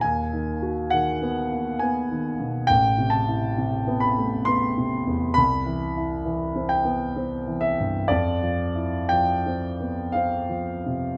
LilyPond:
<<
  \new Staff \with { instrumentName = "Grand piano" } { \time 3/4 \key f \lydian \tempo 4 = 66 aes''4 ges''4 aes''8 r8 | g''8 a''4 b''8 c'''4 | b''4. g''4 e''8 | d''4 g''4 f''4 | }
  \new Staff \with { instrumentName = "Grand piano" } { \clef bass \time 3/4 \key f \lydian \tuplet 3/2 { ees,8 ees8 ges'8 ees8 ces'8 bes8 ces'8 ees8 ces8 } | \tuplet 3/2 { a,,8 c8 e'8 c8 b8 a8 b8 c8 e,8 } | \tuplet 3/2 { c,8 e8 e'8 e8 c'8 b8 c'8 e8 g,8 } | \tuplet 3/2 { f,8 f8 e'8 f8 c'8 b8 c'8 f8 c8 } | }
>>